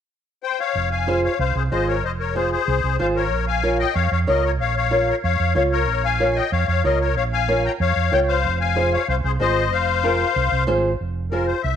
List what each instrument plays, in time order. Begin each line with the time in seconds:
0.43 accordion C5 G5
0.60 accordion C#5 F5
0.75 fingered electric bass F1
0.91 accordion F5 G#5
1.07 nylon-string guitar F4 G#4 C5
1.24 accordion C#5 F5
1.39 fingered electric bass C2, accordion C5 F5
1.55 fingered electric bass C2, accordion G#4 C5
1.71 fingered electric bass G#1, nylon-string guitar F4 G#4 C5, accordion C5 D#5
1.88 accordion A#4 C#5
2.04 fingered electric bass F1, accordion C5 D#5
2.20 accordion A#4 C#5
2.35 nylon-string guitar F4 G#4 C5, accordion G#4 C5
2.52 accordion G#4 C5
2.68 fingered electric bass C2
2.84 fingered electric bass C2
2.99 fingered electric bass G#1, nylon-string guitar F4 G#4 C5, accordion C5 F5
3.16 accordion A#4 C#5
3.31 fingered electric bass A#1
3.48 accordion F5 G#5
3.63 nylon-string guitar F4 A#4 C#5
3.79 accordion D#5 G5
3.94 fingered electric bass F2, accordion C#5 F5
4.11 fingered electric bass F2, accordion C#5 F5
4.27 fingered electric bass C#2, nylon-string guitar F4 A#4 C#5, accordion A#4 D#5
4.44 accordion A#4 C#5
4.60 fingered electric bass A#1, accordion C#5 F5
4.77 accordion C#5 F5
4.91 nylon-string guitar F4 A#4 C#5
5.09 accordion A#4 C#5
5.24 fingered electric bass F2, accordion C#5 F5
5.40 fingered electric bass F2
5.55 fingered electric bass C#2, nylon-string guitar F4 A#4 C#5, accordion C#5 F5
5.72 accordion A#4 C#5
5.88 fingered electric bass A#1
6.04 accordion F5 G#5
6.20 nylon-string guitar F4 A#4 C#5
6.36 accordion D#5 G5
6.52 fingered electric bass F2, accordion C#5 F5
6.67 fingered electric bass F2, accordion C#5 F5
6.84 fingered electric bass C#2, nylon-string guitar F4 A#4 C#5, accordion A#4 D#5
7.00 accordion A#4 C#5
7.16 fingered electric bass A#1, accordion C#5 F5
7.33 accordion F5 G#5
7.48 nylon-string guitar F4 A#4 C#5
7.65 accordion G5 A#5
7.80 fingered electric bass F2, accordion C#5 F5
7.96 fingered electric bass F2
8.12 fingered electric bass C#2, nylon-string guitar F4 A#4 C#5, accordion C#5 G5
8.28 accordion C5 F5
8.44 fingered electric bass F1
8.61 accordion F5 G#5
8.76 nylon-string guitar F4 G#4 C5
8.93 accordion C#5 F5
9.08 fingered electric bass C2, accordion C5 F5
9.24 fingered electric bass C2, accordion G#4 C5
9.40 fingered electric bass G#1, nylon-string guitar F4 G#4 C5, accordion C5 D#5
9.71 fingered electric bass F1, accordion C5 F5
10.03 nylon-string guitar F4 G#4 A#4
10.36 fingered electric bass C2
10.52 fingered electric bass C2
10.67 fingered electric bass G#1, nylon-string guitar F4 G#4 C5
11.00 fingered electric bass F1
11.32 nylon-string guitar F4 G#4 C5, accordion A#4
11.47 accordion C5
11.62 fingered electric bass C2, accordion E5